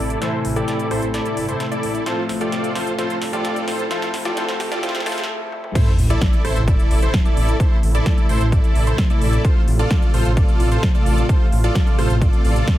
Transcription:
Already playing: grand piano A2 E3 A3 C4 G4 A4, analog synth pad C3 A3 E4, supersaw synth E4 A4 D5, riser
0.00 detuned saw bass A1
0.10 closed hi-hat
0.21 grand piano A2 E3 A3 C4 A4, supersaw synth E4 A4 C5, snare, closed hi-hat
0.45 detuned saw bass A1, open hi-hat
0.56 grand piano A2 E3 A3 C4 G4, supersaw synth E4 A4 D5, closed hi-hat
0.68 snare, closed hi-hat
0.79 closed hi-hat
0.91 detuned saw bass A1, supersaw synth E4 A4 C5, cross-stick, open hi-hat
1.02 detuned saw bass A1, closed hi-hat
1.14 supersaw synth E4 A4 D5, snare, closed hi-hat
1.26 closed hi-hat
1.37 detuned saw bass G1, open hi-hat
1.48 supersaw synth E4 A4 C5, closed hi-hat
1.60 snare, closed hi-hat
1.71 supersaw synth E4 A4 D5, closed hi-hat
1.83 detuned saw bass A1, open hi-hat
1.95 closed hi-hat
2.06 grand piano A2 F3 A3 C4 A4, supersaw synth F4 A4 C5, analog synth pad F4, snare, closed hi-hat
2.29 detuned saw bass A1, snare, open hi-hat
2.40 grand piano A2 F3 A3 C4 G4, supersaw synth F4 A4 D5, closed hi-hat
2.52 snare, closed hi-hat
2.64 closed hi-hat
2.75 detuned saw bass A1, supersaw synth F4 A4 C5, snare, open hi-hat
2.87 detuned saw bass A1, closed hi-hat
2.98 grand piano A2 F3 A3 C4 A4, supersaw synth F4 A4 C5, snare, closed hi-hat
3.10 closed hi-hat
3.22 detuned saw bass G1, snare, open hi-hat
3.32 grand piano A2 F3 A3 C4 G4, supersaw synth F4 A4 D5, closed hi-hat
3.45 snare, closed hi-hat
3.56 closed hi-hat
3.68 detuned saw bass A1, supersaw synth F4 A4 C5, snare, open hi-hat
3.79 closed hi-hat
3.90 grand piano A2 F3 A3 C4 A4, analog synth pad E4, supersaw synth F4 A4 C5, snare, closed hi-hat
4.02 snare, closed hi-hat
4.14 detuned saw bass A1, snare, open hi-hat
4.25 grand piano A2 F3 A3 C4 G4, supersaw synth F4 A4 D5, snare, closed hi-hat
4.36 grand piano A2 F3 A3 C4 A4, supersaw synth F4 A4 C5, snare, closed hi-hat
4.49 snare, closed hi-hat
4.60 detuned saw bass A1, snare, open hi-hat
4.71 detuned saw bass A1, grand piano A2 F3 A3 C4 G4, supersaw synth F4 A4 D5, snare, closed hi-hat
4.82 grand piano A2 F3 A3 C4 A4, supersaw synth F4 A4 C5, snare, closed hi-hat
4.89 snare
4.95 snare, closed hi-hat
5.00 snare
5.05 detuned saw bass A1, grand piano A2 F3 A3 C4 A4, supersaw synth F4 A4 C5, snare, open hi-hat
5.12 snare
5.18 snare, closed hi-hat
5.24 snare
5.52 high tom
5.64 mid tom
5.75 analog synth pad C3 A3 E4, supersaw synth E4 A4 C5, kick, closed hi-hat, crash, sub drop
5.98 detuned saw bass A1, open hi-hat
6.10 supersaw synth E4 A4 D5, closed hi-hat
6.21 kick, snare, closed hi-hat
6.33 closed hi-hat
6.45 detuned saw bass A1, supersaw synth E4 A4 C5, cross-stick, open hi-hat
6.56 detuned saw bass A1, closed hi-hat
6.68 supersaw synth E4 A4 D5, kick, closed hi-hat
6.79 closed hi-hat
6.91 detuned saw bass A1, open hi-hat
7.02 supersaw synth E4 A4 C5, closed hi-hat
7.14 kick, snare, closed hi-hat
7.25 supersaw synth E4 A4 D5, closed hi-hat
7.37 detuned saw bass A1, open hi-hat
7.49 closed hi-hat
7.60 supersaw synth E4 A4 C5, kick, closed hi-hat
7.83 detuned saw bass A1, open hi-hat
7.95 supersaw synth E4 A4 D5, closed hi-hat
8.06 kick, snare, closed hi-hat
8.18 closed hi-hat
8.29 detuned saw bass A1, supersaw synth E4 A4 C5, open hi-hat
8.41 detuned saw bass A1, closed hi-hat
8.52 supersaw synth E4 A4 D5, kick, closed hi-hat
8.64 closed hi-hat
8.75 detuned saw bass A1, open hi-hat
8.87 supersaw synth E4 A4 C5, closed hi-hat
8.98 kick, snare, closed hi-hat
9.10 supersaw synth E4 A4 D5, closed hi-hat
9.22 detuned saw bass A1, open hi-hat
9.33 closed hi-hat
9.45 analog synth pad F4, supersaw synth F4 A4 C5, kick, closed hi-hat
9.68 detuned saw bass A1, open hi-hat
9.79 supersaw synth F4 A4 D5, closed hi-hat
9.91 kick, snare, closed hi-hat
10.02 closed hi-hat
10.14 detuned saw bass A1, supersaw synth F4 A4 C5, open hi-hat
10.25 detuned saw bass A1, closed hi-hat
10.37 supersaw synth F4 A4 D5, kick, closed hi-hat
10.49 closed hi-hat
10.60 detuned saw bass A1, open hi-hat
10.72 supersaw synth F4 A4 C5, closed hi-hat
10.83 kick, snare, closed hi-hat
10.95 supersaw synth F4 A4 D5, closed hi-hat
11.06 detuned saw bass A1, open hi-hat
11.18 closed hi-hat
11.29 supersaw synth F4 A4 C5, kick, closed hi-hat
11.52 detuned saw bass A1, open hi-hat
11.64 supersaw synth F4 A4 D5, closed hi-hat
11.75 kick, snare, closed hi-hat
11.87 closed hi-hat
11.99 detuned saw bass A1, supersaw synth F4 A4 C5, cross-stick, open hi-hat
12.10 detuned saw bass A1, closed hi-hat
12.21 supersaw synth F4 A4 D5, kick, closed hi-hat
12.33 closed hi-hat
12.45 detuned saw bass A1, supersaw synth F4 A4 D5, open hi-hat
12.56 closed hi-hat
12.68 kick, snare, closed hi-hat

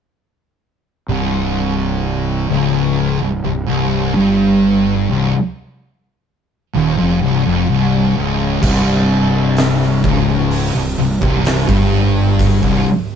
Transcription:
1.09 fingered electric bass C1, distorted electric guitar C2
2.50 fingered electric bass C#1, distorted electric guitar C#2
3.21 fingered electric bass C1, distorted electric guitar C2
3.45 fingered electric bass C1, distorted electric guitar C2
3.69 fingered electric bass C1, distorted electric guitar C2
4.16 fingered electric bass G1, distorted electric guitar G2
5.10 fingered electric bass C1, distorted electric guitar C2
6.75 fingered electric bass D#1, distorted electric guitar D#2
6.99 fingered electric bass F1, distorted electric guitar F2
7.21 fingered electric bass C1, distorted electric guitar C2
7.45 fingered electric bass F1, distorted electric guitar F2
7.69 fingered electric bass C1, distorted electric guitar C2
8.16 fingered electric bass C#1, distorted electric guitar C#2
8.63 fingered electric bass C1, distorted electric guitar C2, kick, crash
9.57 snare, open hi-hat
9.82 snare
10.04 fingered electric bass C#1, distorted electric guitar C#2, kick
10.51 open hi-hat
10.74 fingered electric bass C1, distorted electric guitar C2
10.98 fingered electric bass C1, distorted electric guitar C2
11.22 fingered electric bass C1, distorted electric guitar C2, kick
11.45 snare, open hi-hat
11.68 fingered electric bass G1, distorted electric guitar G2, kick
12.39 kick, open hi-hat
12.63 fingered electric bass C1, distorted electric guitar C2, kick

